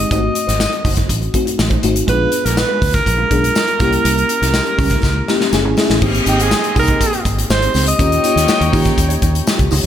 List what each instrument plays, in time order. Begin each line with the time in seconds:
Already playing: fm electric piano G3 G#3 C4 D#4 G4, alto saxophone D#5
0.11 fingered electric bass G#1, fm electric piano A3 C4 D#4 F#4, clean electric guitar A3 D#4 F#4 C5, alto saxophone D#5, kick, closed hi-hat, tambourine
0.23 muted clean electric guitar stroke
0.35 muted clean electric guitar stroke, closed hi-hat, tambourine
0.47 fingered electric bass G#1, clean electric guitar A3 D#4 F#4 C5, snare, closed hi-hat
0.60 muted clean electric guitar stroke, snare, tambourine
0.72 muted clean electric guitar stroke, closed hi-hat
0.84 fingered electric bass F#1, clean electric guitar A3 D#4 F#4 C5, kick, open hi-hat, tambourine
0.96 clean electric guitar A3 D#4 F#4 C5, kick, snare, closed hi-hat
1.09 fingered electric bass A1, muted clean electric guitar stroke, kick, closed hi-hat, tambourine
1.21 muted clean electric guitar stroke, closed hi-hat
1.34 fm electric piano A3 C4 D#4 F#4, kick, closed hi-hat, tambourine
1.45 muted clean electric guitar stroke, closed hi-hat
1.58 fingered electric bass A1, muted clean electric guitar stroke, snare, tambourine
1.70 clean electric guitar A3 D#4 F#4 C5, kick, closed hi-hat
1.82 fingered electric bass G#1, fm electric piano A3 C4 D#4 F#4, muted clean electric guitar stroke, closed hi-hat, tambourine
1.95 muted clean electric guitar stroke, closed hi-hat
2.07 fingered electric bass A#1, clean electric guitar G#3 D4 F4 B4, fm electric piano B3 D4 F4 G#4, alto saxophone B4, kick, closed hi-hat, tambourine
2.32 muted clean electric guitar stroke, closed hi-hat, tambourine
2.44 fingered electric bass A#1, clean electric guitar G#3 D4 F4 B4, alto saxophone A#4, snare, closed hi-hat
2.57 alto saxophone B4, muted clean electric guitar stroke, snare, tambourine
2.68 clean electric guitar G#3 D4 F4 B4
2.81 fingered electric bass D2, muted clean electric guitar stroke, kick, open hi-hat, tambourine
2.93 alto saxophone A#4, muted clean electric guitar stroke, kick, snare, closed hi-hat
3.06 fingered electric bass A#1, muted clean electric guitar stroke, kick, closed hi-hat, tambourine
3.17 clean electric guitar G#3 D4 F4 B4
3.30 fingered electric bass B1, clean electric guitar G#3 D4 F4 B4, fm electric piano B3 D4 F4 G#4, kick, closed hi-hat
3.42 muted clean electric guitar stroke, closed hi-hat
3.55 muted clean electric guitar stroke, snare, tambourine
3.67 muted clean electric guitar stroke, closed hi-hat
3.79 fingered electric bass C2, clean electric guitar G3 C#4 E4 A#4, fm electric piano A#3 C#4 E4 G4, kick, snare, closed hi-hat, tambourine
3.91 muted clean electric guitar stroke, closed hi-hat
4.03 fingered electric bass C2, clean electric guitar G3 C#4 E4 A#4, closed hi-hat
4.16 muted clean electric guitar stroke, closed hi-hat
4.29 muted clean electric guitar stroke, closed hi-hat, tambourine
4.41 fingered electric bass C2, clean electric guitar G3 C#4 E4 A#4, snare, closed hi-hat
4.53 muted clean electric guitar stroke, snare, tambourine
4.66 muted clean electric guitar stroke, closed hi-hat
4.78 fingered electric bass C#2, clean electric guitar G3 C#4 E4 A#4, kick, open hi-hat, tambourine
4.90 clean electric guitar G3 C#4 E4 A#4, kick, snare, closed hi-hat
5.02 fingered electric bass C#2, muted clean electric guitar stroke, kick, snare, tambourine
5.15 muted clean electric guitar stroke
5.28 fm electric piano A#3 C#4 E4 G4 A#5, snare, tambourine
5.40 muted clean electric guitar stroke, snare
5.52 fingered electric bass F#1, fm electric piano A3 C#4 E4 G#4 G#5, muted clean electric guitar stroke, snare, tambourine
5.64 fingered electric bass G#1, clean electric guitar E3 A3 C#4 G#4
5.76 fm electric piano A3 C#4 E4 G#4 E5, muted clean electric guitar stroke, snare, tambourine
5.89 fingered electric bass A1, muted clean electric guitar stroke, snare
6.01 fingered electric bass G#1, fm electric piano A#3 C4 D#4 G4, clean electric guitar C4 D#4 G4 C5, horn section C4 G#4 D#5, kick, crash, tambourine
6.15 closed hi-hat
6.26 fingered electric bass G#1, fm electric piano A#3 C4 D#4 G5, clean electric guitar C4 D#4 G4 D#5, alto saxophone G4, closed hi-hat, tambourine
6.38 clean electric guitar C4 D#4 C5, alto saxophone G#4, closed hi-hat
6.51 muted clean electric guitar stroke, snare, tambourine
6.63 muted clean electric guitar stroke, closed hi-hat
6.75 fingered electric bass C2, fm electric piano A#3 C4 D#4 G4, clean electric guitar C4 D#4 G4 C5, alto saxophone A#4, kick, open hi-hat, tambourine
6.88 muted clean electric guitar stroke, kick, closed hi-hat
7.01 muted clean electric guitar stroke, kick, closed hi-hat, tambourine
7.13 muted clean electric guitar stroke, closed hi-hat
7.25 fingered electric bass G#1, kick, closed hi-hat, tambourine
7.37 muted clean electric guitar stroke, closed hi-hat
7.50 fingered electric bass G#1, alto saxophone C5, muted clean electric guitar stroke, snare, tambourine
7.62 clean electric guitar C4 D#4 G4 C5, closed hi-hat
7.74 fingered electric bass C#2, clean electric guitar C4 D#4 G4 C5, snare, open hi-hat, tambourine
7.87 alto saxophone D#5, muted clean electric guitar stroke, closed hi-hat
7.98 fingered electric bass D#2, clean electric guitar A#3 D#4 G4 C#5, fm electric piano A#3 C#4 F4 G4, horn section D#4 C#5 G5, kick, closed hi-hat, tambourine
8.12 closed hi-hat
8.23 clean electric guitar A#3 D#4 G4 C#5, fm electric piano A#3 C#4 F4 G4, closed hi-hat, tambourine
8.35 fingered electric bass D#2, clean electric guitar A#3 D#4 G4 C#5, snare, closed hi-hat
8.48 muted clean electric guitar stroke, snare, tambourine
8.60 fingered electric bass D#2, muted clean electric guitar stroke, closed hi-hat
8.72 fingered electric bass D#3, fm electric piano A#3 C#4 F4 G4, clean electric guitar A#3 D#4 G4 C#5, kick, open hi-hat, tambourine
8.85 muted clean electric guitar stroke, kick, snare, closed hi-hat
8.96 fingered electric bass D#2, muted clean electric guitar stroke, kick, closed hi-hat, tambourine
9.09 clean electric guitar A#3 D#4 G4 C#5, closed hi-hat
9.21 fingered electric bass D#2, clean electric guitar A#3 D#4 G4 C#5, kick, closed hi-hat, tambourine
9.34 muted clean electric guitar stroke, closed hi-hat
9.46 muted clean electric guitar stroke, snare, tambourine
9.59 fingered electric bass C#2, muted clean electric guitar stroke, kick, closed hi-hat
9.71 fingered electric bass C#2, clean electric guitar A#3 D#4 G4 C#5, open hi-hat, tambourine